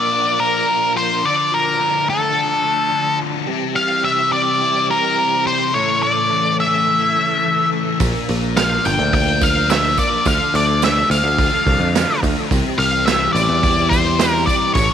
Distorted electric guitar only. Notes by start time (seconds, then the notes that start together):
Already playing: A#2 F3 A#3
0.11 D4
0.39 A#3
0.66 A#2
0.95 F3
1.24 D3
1.52 F3
1.79 D3
2.07 A3
2.34 D4
2.64 A3
2.92 D3
3.20 F3
3.48 C3
3.76 G3
4.04 C3
4.33 C4
4.62 E4
4.91 C4
5.18 C3
5.47 G3
5.74 A2
6.02 A3
6.31 E3
6.59 C#4
6.88 E4
7.17 C#4
7.45 E3
7.73 A3
8.00 A#2
8.29 A#3
8.56 F3
8.85 D4
9.13 F4
9.42 D4
9.70 F3
9.99 A#3
10.27 D3
10.56 A3
10.84 D3
11.12 D4
11.40 F4
11.67 D4
11.95 D3
12.24 A3
12.52 C3
12.80 G3
13.08 E3
13.35 C4
13.64 E4
13.92 C4
14.19 E3
14.49 G3
14.77 A2